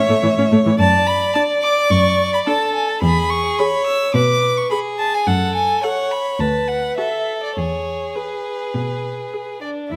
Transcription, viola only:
0.09 A3
0.23 E3
0.38 C#4
0.52 A3
0.66 E3
1.36 D4
2.47 D4
3.60 G#4
4.71 G#4
5.84 A4
6.98 F#4
8.16 G#4
9.34 G#4
9.92 E4

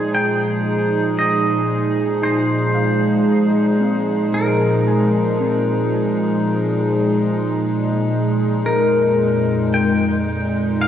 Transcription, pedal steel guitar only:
Already playing: G#5
0.15 G5
1.19 D#5
2.23 C5
4.34 A#4
8.66 A#4
9.74 G5
10.81 F5

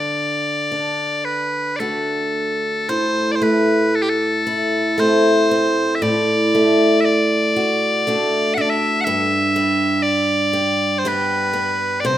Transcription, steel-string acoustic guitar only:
Already playing: D3
0.72 D4
1.80 A3 D4 F#4
2.89 A2
3.42 A3
4.47 E4
4.98 A3 C4 E4
5.51 C4
6.02 A2
6.55 A3
7.56 F#4
8.07 A3 D4 F#4
8.58 D4
9.07 G2
9.56 G3
10.53 G4
11.05 G3 B3 G4
11.53 B3
12.05 C3

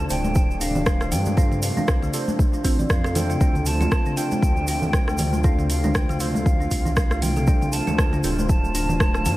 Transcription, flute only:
0.10 G5
0.61 F5
1.12 G5
1.38 F5
1.63 F5
2.90 F5
3.16 G5
3.66 A5
4.17 G5
5.44 F5
5.70 F5
5.95 G5
6.20 F5
6.97 F5
7.22 G5
7.73 A5
8.48 A5

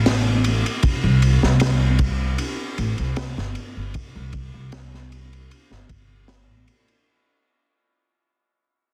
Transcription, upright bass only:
Already playing: A1
1.04 C2
1.43 C2
2.78 A1
2.99 C2
3.38 G1
3.77 G1
4.16 C2
4.54 C2
5.71 G1
5.90 G1
6.49 A1

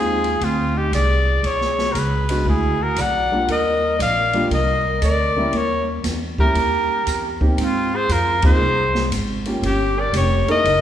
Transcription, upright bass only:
Already playing: D#2
0.41 D2
0.92 C2
1.43 B1
1.94 C#2
2.45 D2
2.97 B1
3.48 D#2
3.99 A#1
4.50 C2
5.02 D2
5.53 D#2
6.04 E2
6.55 D#2
7.07 E2
7.57 G#2
8.09 F2
8.60 C2
9.11 G#1
9.62 G1
10.13 F1
10.47 muted upright bass stroke
10.64 F#1

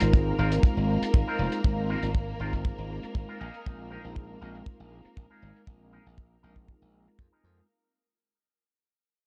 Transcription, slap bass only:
0.01 G#1
0.39 G#1
0.77 G#1
1.14 G#1
1.39 F1
1.65 G#1
2.03 G#1
2.40 G#1
2.78 G#1
3.15 G#1
3.41 A#1
3.66 A#1
4.05 A#1
4.42 A#1
4.80 A#1
5.17 A#1
5.42 G#1
5.67 A#1
6.06 A#1
6.43 A#1
6.82 A#1
7.07 muted slap bass stroke
7.19 F2
7.44 F2

